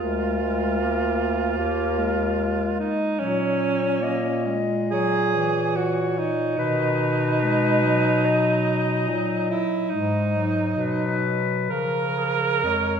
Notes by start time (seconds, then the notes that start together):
Already playing: F4
0.01 D2 G#3 A#4
0.40 G#3
0.81 A#3
1.58 D#2 A#3 A#4
1.98 G#3
2.80 D#4
3.20 A#2 F#3 C#4 C#5
4.01 A#3 D#5
4.46 G#3
4.91 F#3 G#4 C#5
5.36 E3
5.76 F#4 C#5
6.18 D#4
6.58 B2 D#3 B4
7.42 G#3 B4
7.84 F#3
8.25 D#5
9.08 A#2 F#3
9.51 E4
9.89 G#2 G#3 D#4
10.36 F#3
10.76 B2 B4
11.69 C#3 F3 A#4
12.18 G#4
12.63 F2 G#3 C#5